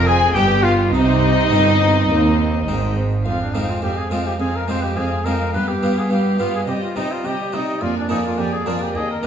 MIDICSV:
0, 0, Header, 1, 8, 480
1, 0, Start_track
1, 0, Key_signature, -3, "minor"
1, 0, Tempo, 580271
1, 774, Time_signature, 4, 2, 24, 8
1, 2698, Tempo, 569260
1, 7763, End_track
2, 0, Start_track
2, 0, Title_t, "Violin section"
2, 0, Program_c, 0, 48
2, 64, Note_on_c, 0, 80, 95
2, 293, Note_off_c, 0, 80, 0
2, 299, Note_on_c, 0, 79, 86
2, 531, Note_off_c, 0, 79, 0
2, 539, Note_on_c, 0, 77, 78
2, 605, Note_off_c, 0, 77, 0
2, 779, Note_on_c, 0, 75, 96
2, 2428, Note_off_c, 0, 75, 0
2, 2690, Note_on_c, 0, 80, 36
2, 2920, Note_off_c, 0, 80, 0
2, 2930, Note_on_c, 0, 80, 34
2, 3162, Note_off_c, 0, 80, 0
2, 3172, Note_on_c, 0, 80, 36
2, 3400, Note_off_c, 0, 80, 0
2, 3410, Note_on_c, 0, 80, 32
2, 3636, Note_off_c, 0, 80, 0
2, 3646, Note_on_c, 0, 80, 33
2, 3873, Note_off_c, 0, 80, 0
2, 3883, Note_on_c, 0, 80, 32
2, 4117, Note_off_c, 0, 80, 0
2, 4128, Note_on_c, 0, 80, 34
2, 4363, Note_off_c, 0, 80, 0
2, 4373, Note_on_c, 0, 80, 33
2, 4612, Note_off_c, 0, 80, 0
2, 4619, Note_on_c, 0, 79, 37
2, 4844, Note_off_c, 0, 79, 0
2, 4854, Note_on_c, 0, 79, 34
2, 5083, Note_off_c, 0, 79, 0
2, 5094, Note_on_c, 0, 79, 36
2, 5325, Note_off_c, 0, 79, 0
2, 5336, Note_on_c, 0, 79, 33
2, 5570, Note_off_c, 0, 79, 0
2, 5580, Note_on_c, 0, 79, 34
2, 5806, Note_off_c, 0, 79, 0
2, 5816, Note_on_c, 0, 79, 36
2, 6048, Note_off_c, 0, 79, 0
2, 6058, Note_on_c, 0, 79, 37
2, 6289, Note_off_c, 0, 79, 0
2, 6299, Note_on_c, 0, 79, 33
2, 6535, Note_off_c, 0, 79, 0
2, 6538, Note_on_c, 0, 80, 39
2, 6774, Note_off_c, 0, 80, 0
2, 6783, Note_on_c, 0, 80, 35
2, 7017, Note_off_c, 0, 80, 0
2, 7030, Note_on_c, 0, 80, 41
2, 7249, Note_off_c, 0, 80, 0
2, 7259, Note_on_c, 0, 80, 37
2, 7495, Note_off_c, 0, 80, 0
2, 7502, Note_on_c, 0, 79, 36
2, 7729, Note_off_c, 0, 79, 0
2, 7763, End_track
3, 0, Start_track
3, 0, Title_t, "Violin section"
3, 0, Program_c, 1, 48
3, 51, Note_on_c, 1, 68, 79
3, 280, Note_on_c, 1, 67, 79
3, 292, Note_off_c, 1, 68, 0
3, 521, Note_on_c, 1, 65, 71
3, 522, Note_off_c, 1, 67, 0
3, 762, Note_on_c, 1, 63, 94
3, 768, Note_off_c, 1, 65, 0
3, 2420, Note_off_c, 1, 63, 0
3, 2686, Note_on_c, 1, 77, 40
3, 2920, Note_off_c, 1, 77, 0
3, 2930, Note_on_c, 1, 77, 33
3, 3166, Note_off_c, 1, 77, 0
3, 3176, Note_on_c, 1, 77, 36
3, 3411, Note_off_c, 1, 77, 0
3, 3421, Note_on_c, 1, 77, 33
3, 3653, Note_off_c, 1, 77, 0
3, 3664, Note_on_c, 1, 77, 37
3, 3897, Note_off_c, 1, 77, 0
3, 3906, Note_on_c, 1, 77, 33
3, 4130, Note_off_c, 1, 77, 0
3, 4140, Note_on_c, 1, 77, 34
3, 4375, Note_off_c, 1, 77, 0
3, 4385, Note_on_c, 1, 77, 33
3, 4603, Note_off_c, 1, 77, 0
3, 4613, Note_on_c, 1, 77, 41
3, 4846, Note_off_c, 1, 77, 0
3, 4856, Note_on_c, 1, 77, 34
3, 5084, Note_off_c, 1, 77, 0
3, 5095, Note_on_c, 1, 77, 36
3, 5328, Note_off_c, 1, 77, 0
3, 5338, Note_on_c, 1, 77, 30
3, 5574, Note_off_c, 1, 77, 0
3, 5582, Note_on_c, 1, 75, 38
3, 5817, Note_off_c, 1, 75, 0
3, 5825, Note_on_c, 1, 75, 34
3, 6056, Note_off_c, 1, 75, 0
3, 6066, Note_on_c, 1, 75, 37
3, 6297, Note_off_c, 1, 75, 0
3, 6307, Note_on_c, 1, 75, 33
3, 6539, Note_off_c, 1, 75, 0
3, 6547, Note_on_c, 1, 74, 42
3, 6779, Note_off_c, 1, 74, 0
3, 6791, Note_on_c, 1, 74, 33
3, 7021, Note_off_c, 1, 74, 0
3, 7033, Note_on_c, 1, 74, 38
3, 7262, Note_off_c, 1, 74, 0
3, 7276, Note_on_c, 1, 74, 34
3, 7503, Note_off_c, 1, 74, 0
3, 7505, Note_on_c, 1, 75, 40
3, 7737, Note_off_c, 1, 75, 0
3, 7763, End_track
4, 0, Start_track
4, 0, Title_t, "Trumpet"
4, 0, Program_c, 2, 56
4, 56, Note_on_c, 2, 68, 81
4, 286, Note_on_c, 2, 67, 84
4, 299, Note_off_c, 2, 68, 0
4, 521, Note_on_c, 2, 65, 79
4, 533, Note_off_c, 2, 67, 0
4, 768, Note_off_c, 2, 65, 0
4, 772, Note_on_c, 2, 63, 79
4, 2425, Note_off_c, 2, 63, 0
4, 2695, Note_on_c, 2, 65, 54
4, 2808, Note_off_c, 2, 65, 0
4, 2821, Note_on_c, 2, 62, 40
4, 2931, Note_on_c, 2, 63, 42
4, 2944, Note_off_c, 2, 62, 0
4, 3062, Note_on_c, 2, 65, 45
4, 3075, Note_off_c, 2, 63, 0
4, 3171, Note_off_c, 2, 65, 0
4, 3176, Note_on_c, 2, 67, 53
4, 3302, Note_on_c, 2, 68, 49
4, 3315, Note_off_c, 2, 67, 0
4, 3412, Note_off_c, 2, 68, 0
4, 3417, Note_on_c, 2, 65, 48
4, 3536, Note_off_c, 2, 65, 0
4, 3543, Note_on_c, 2, 67, 43
4, 3596, Note_off_c, 2, 67, 0
4, 3653, Note_on_c, 2, 68, 55
4, 3790, Note_on_c, 2, 70, 49
4, 3803, Note_off_c, 2, 68, 0
4, 3892, Note_off_c, 2, 70, 0
4, 3897, Note_on_c, 2, 72, 57
4, 4018, Note_on_c, 2, 67, 50
4, 4031, Note_off_c, 2, 72, 0
4, 4136, Note_on_c, 2, 68, 45
4, 4149, Note_off_c, 2, 67, 0
4, 4372, Note_on_c, 2, 70, 52
4, 4385, Note_off_c, 2, 68, 0
4, 4608, Note_off_c, 2, 70, 0
4, 4613, Note_on_c, 2, 71, 63
4, 4735, Note_on_c, 2, 67, 53
4, 4748, Note_off_c, 2, 71, 0
4, 4988, Note_on_c, 2, 68, 46
4, 5000, Note_off_c, 2, 67, 0
4, 5104, Note_off_c, 2, 68, 0
4, 5109, Note_on_c, 2, 67, 52
4, 5332, Note_off_c, 2, 67, 0
4, 5337, Note_on_c, 2, 65, 48
4, 5456, Note_off_c, 2, 65, 0
4, 5467, Note_on_c, 2, 68, 49
4, 5519, Note_off_c, 2, 68, 0
4, 5577, Note_on_c, 2, 67, 45
4, 5632, Note_off_c, 2, 67, 0
4, 5700, Note_on_c, 2, 65, 47
4, 5817, Note_off_c, 2, 65, 0
4, 5823, Note_on_c, 2, 63, 57
4, 5946, Note_on_c, 2, 65, 51
4, 5958, Note_off_c, 2, 63, 0
4, 6063, Note_on_c, 2, 67, 53
4, 6075, Note_off_c, 2, 65, 0
4, 6305, Note_on_c, 2, 63, 54
4, 6318, Note_off_c, 2, 67, 0
4, 6536, Note_on_c, 2, 65, 60
4, 6549, Note_off_c, 2, 63, 0
4, 6658, Note_off_c, 2, 65, 0
4, 6665, Note_on_c, 2, 62, 46
4, 6778, Note_off_c, 2, 62, 0
4, 6783, Note_on_c, 2, 63, 54
4, 6836, Note_off_c, 2, 63, 0
4, 6909, Note_on_c, 2, 65, 53
4, 7013, Note_on_c, 2, 67, 60
4, 7026, Note_off_c, 2, 65, 0
4, 7136, Note_on_c, 2, 68, 53
4, 7149, Note_off_c, 2, 67, 0
4, 7259, Note_on_c, 2, 65, 51
4, 7271, Note_off_c, 2, 68, 0
4, 7380, Note_on_c, 2, 67, 53
4, 7392, Note_off_c, 2, 65, 0
4, 7501, Note_on_c, 2, 68, 60
4, 7514, Note_off_c, 2, 67, 0
4, 7620, Note_off_c, 2, 68, 0
4, 7626, Note_on_c, 2, 70, 53
4, 7757, Note_off_c, 2, 70, 0
4, 7763, End_track
5, 0, Start_track
5, 0, Title_t, "Viola section"
5, 0, Program_c, 3, 48
5, 0, Note_on_c, 3, 60, 66
5, 283, Note_off_c, 3, 60, 0
5, 287, Note_on_c, 3, 59, 64
5, 768, Note_on_c, 3, 60, 69
5, 771, Note_off_c, 3, 59, 0
5, 2495, Note_off_c, 3, 60, 0
5, 2688, Note_on_c, 3, 60, 32
5, 2920, Note_off_c, 3, 60, 0
5, 2930, Note_on_c, 3, 60, 33
5, 3166, Note_off_c, 3, 60, 0
5, 3176, Note_on_c, 3, 60, 35
5, 3405, Note_off_c, 3, 60, 0
5, 3415, Note_on_c, 3, 60, 30
5, 3640, Note_off_c, 3, 60, 0
5, 3651, Note_on_c, 3, 60, 35
5, 3876, Note_off_c, 3, 60, 0
5, 3886, Note_on_c, 3, 60, 30
5, 4126, Note_off_c, 3, 60, 0
5, 4136, Note_on_c, 3, 60, 34
5, 4363, Note_off_c, 3, 60, 0
5, 4374, Note_on_c, 3, 60, 37
5, 4612, Note_off_c, 3, 60, 0
5, 4615, Note_on_c, 3, 59, 36
5, 4846, Note_off_c, 3, 59, 0
5, 4857, Note_on_c, 3, 59, 35
5, 5090, Note_off_c, 3, 59, 0
5, 5101, Note_on_c, 3, 59, 37
5, 5328, Note_off_c, 3, 59, 0
5, 5338, Note_on_c, 3, 59, 34
5, 5574, Note_off_c, 3, 59, 0
5, 5577, Note_on_c, 3, 55, 36
5, 5804, Note_off_c, 3, 55, 0
5, 5814, Note_on_c, 3, 55, 29
5, 6043, Note_off_c, 3, 55, 0
5, 6053, Note_on_c, 3, 55, 36
5, 6288, Note_off_c, 3, 55, 0
5, 6298, Note_on_c, 3, 55, 35
5, 6534, Note_off_c, 3, 55, 0
5, 6534, Note_on_c, 3, 58, 39
5, 6756, Note_off_c, 3, 58, 0
5, 6766, Note_on_c, 3, 58, 37
5, 6992, Note_off_c, 3, 58, 0
5, 7002, Note_on_c, 3, 58, 37
5, 7239, Note_off_c, 3, 58, 0
5, 7250, Note_on_c, 3, 58, 35
5, 7482, Note_off_c, 3, 58, 0
5, 7492, Note_on_c, 3, 58, 36
5, 7719, Note_off_c, 3, 58, 0
5, 7729, Note_on_c, 3, 58, 34
5, 7763, Note_off_c, 3, 58, 0
5, 7763, End_track
6, 0, Start_track
6, 0, Title_t, "Harpsichord"
6, 0, Program_c, 4, 6
6, 0, Note_on_c, 4, 41, 57
6, 0, Note_on_c, 4, 60, 43
6, 0, Note_on_c, 4, 65, 47
6, 265, Note_off_c, 4, 41, 0
6, 266, Note_off_c, 4, 60, 0
6, 267, Note_off_c, 4, 65, 0
6, 298, Note_on_c, 4, 43, 60
6, 299, Note_on_c, 4, 62, 48
6, 300, Note_on_c, 4, 59, 47
6, 743, Note_off_c, 4, 43, 0
6, 747, Note_off_c, 4, 59, 0
6, 748, Note_off_c, 4, 62, 0
6, 781, Note_on_c, 4, 48, 55
6, 1228, Note_off_c, 4, 48, 0
6, 1254, Note_on_c, 4, 43, 59
6, 1258, Note_on_c, 4, 60, 46
6, 1261, Note_on_c, 4, 63, 48
6, 1606, Note_off_c, 4, 60, 0
6, 1607, Note_off_c, 4, 63, 0
6, 1706, Note_off_c, 4, 43, 0
6, 1742, Note_on_c, 4, 39, 58
6, 2187, Note_off_c, 4, 39, 0
6, 2219, Note_on_c, 4, 44, 58
6, 2221, Note_on_c, 4, 60, 46
6, 2225, Note_on_c, 4, 63, 50
6, 2564, Note_off_c, 4, 60, 0
6, 2568, Note_off_c, 4, 63, 0
6, 2665, Note_off_c, 4, 44, 0
6, 2695, Note_on_c, 4, 41, 32
6, 2914, Note_off_c, 4, 41, 0
6, 2939, Note_on_c, 4, 41, 36
6, 2939, Note_on_c, 4, 56, 26
6, 2943, Note_on_c, 4, 60, 26
6, 2945, Note_on_c, 4, 65, 31
6, 3156, Note_off_c, 4, 41, 0
6, 3172, Note_on_c, 4, 41, 30
6, 3286, Note_off_c, 4, 56, 0
6, 3288, Note_off_c, 4, 60, 0
6, 3290, Note_off_c, 4, 65, 0
6, 3392, Note_off_c, 4, 41, 0
6, 3415, Note_on_c, 4, 41, 31
6, 3417, Note_on_c, 4, 56, 23
6, 3421, Note_on_c, 4, 60, 25
6, 3421, Note_on_c, 4, 65, 28
6, 3591, Note_off_c, 4, 56, 0
6, 3593, Note_off_c, 4, 60, 0
6, 3594, Note_off_c, 4, 65, 0
6, 3633, Note_off_c, 4, 41, 0
6, 3655, Note_on_c, 4, 41, 30
6, 3873, Note_off_c, 4, 41, 0
6, 3894, Note_on_c, 4, 56, 26
6, 3897, Note_on_c, 4, 41, 34
6, 3903, Note_on_c, 4, 60, 25
6, 3904, Note_on_c, 4, 65, 30
6, 4114, Note_off_c, 4, 41, 0
6, 4140, Note_on_c, 4, 41, 31
6, 4242, Note_off_c, 4, 56, 0
6, 4247, Note_off_c, 4, 60, 0
6, 4248, Note_off_c, 4, 65, 0
6, 4356, Note_off_c, 4, 41, 0
6, 4381, Note_on_c, 4, 41, 33
6, 4384, Note_on_c, 4, 56, 27
6, 4387, Note_on_c, 4, 60, 27
6, 4389, Note_on_c, 4, 65, 29
6, 4556, Note_off_c, 4, 56, 0
6, 4557, Note_off_c, 4, 60, 0
6, 4558, Note_off_c, 4, 65, 0
6, 4597, Note_off_c, 4, 41, 0
6, 4623, Note_on_c, 4, 43, 31
6, 4838, Note_off_c, 4, 43, 0
6, 4861, Note_on_c, 4, 43, 33
6, 4863, Note_on_c, 4, 59, 27
6, 4867, Note_on_c, 4, 65, 30
6, 5076, Note_off_c, 4, 43, 0
6, 5093, Note_on_c, 4, 43, 34
6, 5207, Note_off_c, 4, 59, 0
6, 5210, Note_off_c, 4, 65, 0
6, 5312, Note_off_c, 4, 43, 0
6, 5332, Note_on_c, 4, 43, 33
6, 5341, Note_on_c, 4, 59, 27
6, 5343, Note_on_c, 4, 65, 29
6, 5513, Note_off_c, 4, 59, 0
6, 5515, Note_off_c, 4, 65, 0
6, 5551, Note_off_c, 4, 43, 0
6, 5576, Note_on_c, 4, 48, 31
6, 5794, Note_off_c, 4, 48, 0
6, 5816, Note_on_c, 4, 48, 30
6, 5819, Note_on_c, 4, 60, 28
6, 5820, Note_on_c, 4, 63, 30
6, 6034, Note_off_c, 4, 48, 0
6, 6058, Note_on_c, 4, 48, 34
6, 6166, Note_off_c, 4, 60, 0
6, 6166, Note_off_c, 4, 63, 0
6, 6275, Note_off_c, 4, 48, 0
6, 6292, Note_on_c, 4, 48, 36
6, 6299, Note_on_c, 4, 60, 28
6, 6300, Note_on_c, 4, 63, 28
6, 6472, Note_off_c, 4, 60, 0
6, 6473, Note_off_c, 4, 63, 0
6, 6512, Note_off_c, 4, 48, 0
6, 6535, Note_on_c, 4, 41, 36
6, 6753, Note_off_c, 4, 41, 0
6, 6770, Note_on_c, 4, 41, 37
6, 6771, Note_on_c, 4, 58, 32
6, 6774, Note_on_c, 4, 62, 28
6, 6777, Note_on_c, 4, 68, 33
6, 6991, Note_off_c, 4, 41, 0
6, 7017, Note_on_c, 4, 41, 31
6, 7120, Note_off_c, 4, 58, 0
6, 7122, Note_off_c, 4, 62, 0
6, 7124, Note_off_c, 4, 68, 0
6, 7235, Note_off_c, 4, 41, 0
6, 7251, Note_on_c, 4, 58, 27
6, 7252, Note_on_c, 4, 41, 33
6, 7256, Note_on_c, 4, 62, 26
6, 7260, Note_on_c, 4, 68, 30
6, 7427, Note_off_c, 4, 58, 0
6, 7430, Note_off_c, 4, 62, 0
6, 7432, Note_off_c, 4, 68, 0
6, 7472, Note_off_c, 4, 41, 0
6, 7496, Note_on_c, 4, 39, 35
6, 7713, Note_off_c, 4, 39, 0
6, 7730, Note_on_c, 4, 58, 29
6, 7731, Note_on_c, 4, 39, 38
6, 7732, Note_on_c, 4, 63, 27
6, 7737, Note_on_c, 4, 67, 33
6, 7763, Note_off_c, 4, 39, 0
6, 7763, Note_off_c, 4, 58, 0
6, 7763, Note_off_c, 4, 63, 0
6, 7763, Note_off_c, 4, 67, 0
6, 7763, End_track
7, 0, Start_track
7, 0, Title_t, "Cello section"
7, 0, Program_c, 5, 48
7, 0, Note_on_c, 5, 41, 71
7, 287, Note_off_c, 5, 41, 0
7, 292, Note_on_c, 5, 43, 63
7, 764, Note_off_c, 5, 43, 0
7, 771, Note_on_c, 5, 48, 81
7, 1246, Note_off_c, 5, 48, 0
7, 1257, Note_on_c, 5, 43, 70
7, 1740, Note_off_c, 5, 43, 0
7, 1740, Note_on_c, 5, 39, 73
7, 2210, Note_off_c, 5, 39, 0
7, 2222, Note_on_c, 5, 44, 67
7, 2690, Note_off_c, 5, 44, 0
7, 2701, Note_on_c, 5, 41, 46
7, 2768, Note_off_c, 5, 41, 0
7, 2939, Note_on_c, 5, 41, 40
7, 3007, Note_off_c, 5, 41, 0
7, 3177, Note_on_c, 5, 41, 36
7, 3245, Note_off_c, 5, 41, 0
7, 3418, Note_on_c, 5, 41, 39
7, 3486, Note_off_c, 5, 41, 0
7, 3658, Note_on_c, 5, 41, 39
7, 3725, Note_off_c, 5, 41, 0
7, 3894, Note_on_c, 5, 41, 35
7, 3962, Note_off_c, 5, 41, 0
7, 4140, Note_on_c, 5, 41, 36
7, 4207, Note_off_c, 5, 41, 0
7, 4381, Note_on_c, 5, 41, 42
7, 4449, Note_off_c, 5, 41, 0
7, 4619, Note_on_c, 5, 43, 49
7, 4687, Note_off_c, 5, 43, 0
7, 4859, Note_on_c, 5, 43, 38
7, 4926, Note_off_c, 5, 43, 0
7, 5099, Note_on_c, 5, 43, 38
7, 5167, Note_off_c, 5, 43, 0
7, 5341, Note_on_c, 5, 43, 37
7, 5409, Note_off_c, 5, 43, 0
7, 5577, Note_on_c, 5, 48, 37
7, 5645, Note_off_c, 5, 48, 0
7, 5820, Note_on_c, 5, 48, 37
7, 5887, Note_off_c, 5, 48, 0
7, 6058, Note_on_c, 5, 48, 35
7, 6126, Note_off_c, 5, 48, 0
7, 6302, Note_on_c, 5, 48, 38
7, 6369, Note_off_c, 5, 48, 0
7, 6543, Note_on_c, 5, 41, 47
7, 6611, Note_off_c, 5, 41, 0
7, 6782, Note_on_c, 5, 41, 43
7, 6849, Note_off_c, 5, 41, 0
7, 7018, Note_on_c, 5, 41, 41
7, 7085, Note_off_c, 5, 41, 0
7, 7257, Note_on_c, 5, 41, 39
7, 7324, Note_off_c, 5, 41, 0
7, 7500, Note_on_c, 5, 39, 43
7, 7567, Note_off_c, 5, 39, 0
7, 7763, End_track
8, 0, Start_track
8, 0, Title_t, "Double bass section"
8, 0, Program_c, 6, 48
8, 0, Note_on_c, 6, 29, 76
8, 282, Note_off_c, 6, 29, 0
8, 292, Note_on_c, 6, 31, 66
8, 763, Note_off_c, 6, 31, 0
8, 771, Note_on_c, 6, 36, 82
8, 1247, Note_off_c, 6, 36, 0
8, 1254, Note_on_c, 6, 31, 72
8, 1737, Note_on_c, 6, 39, 69
8, 1739, Note_off_c, 6, 31, 0
8, 2208, Note_off_c, 6, 39, 0
8, 2214, Note_on_c, 6, 32, 68
8, 2686, Note_off_c, 6, 32, 0
8, 7763, End_track
0, 0, End_of_file